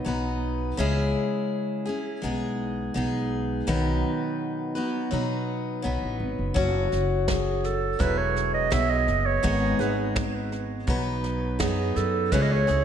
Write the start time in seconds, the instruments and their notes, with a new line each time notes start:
0.05 upright bass B1, steel-string acoustic guitar F#3 B3 D#4 B4
0.77 upright bass C#2, steel-string acoustic guitar C#3 G#3 C#4 E4 G#4
1.85 steel-string acoustic guitar C#4 E4 G#4
2.22 upright bass B1, steel-string acoustic guitar G#3 B3 D#4 G#4
2.94 upright bass B1, steel-string acoustic guitar G#3 B3 D#4 G#4
3.67 upright bass B1, steel-string acoustic guitar B2 D#3 F#3 B3 D#4 B4
4.75 steel-string acoustic guitar F#3 B3 D#4 B4
5.11 upright bass B2, steel-string acoustic guitar F#3 B3 D#4 B4
5.82 upright bass B1, steel-string acoustic guitar F#3 B3 D#4 B4
6.02 upright bass A1
6.20 upright bass G#1
6.38 upright bass F#1
6.54 upright bass F#1, steel-string acoustic guitar F#3 C#4 F#4, kick, snare
6.92 upright bass F#1, snare
7.28 clarinet G#4, kick, snare
7.64 clarinet A4, snare
7.99 upright bass E1, steel-string acoustic guitar F#3 B3 E4 G#4, clarinet B4, kick, snare
8.18 clarinet C#5
8.36 snare
8.54 clarinet D#5
8.70 upright bass B1, steel-string acoustic guitar F#3 B3 E4 G#4, clarinet E5, kick, snare
8.89 clarinet D#5
9.08 upright bass F#1, snare
9.26 clarinet C#5
9.43 upright bass G#1, steel-string acoustic guitar G#2 D#3 G#3 B3 D#4 G#4, kick, snare
9.79 upright bass G#1, steel-string acoustic guitar G#3 B3 D#4 G#4, clarinet B4, snare
10.16 kick, snare
10.52 snare
10.87 upright bass B1, steel-string acoustic guitar F#3 B3 D#4 B4, kick, snare
11.24 snare
11.59 upright bass F#2, steel-string acoustic guitar F#3 B3 D#4 B4, clarinet G#4, kick, snare
11.96 upright bass F#2, clarinet A4, snare
12.32 upright bass C#2, steel-string acoustic guitar C#3 G#3 C#4 E4 G#4, clarinet B4, kick, snare
12.42 clarinet D#5
12.52 clarinet C#5
12.67 upright bass C#2, steel-string acoustic guitar C#4 E4 G#4, snare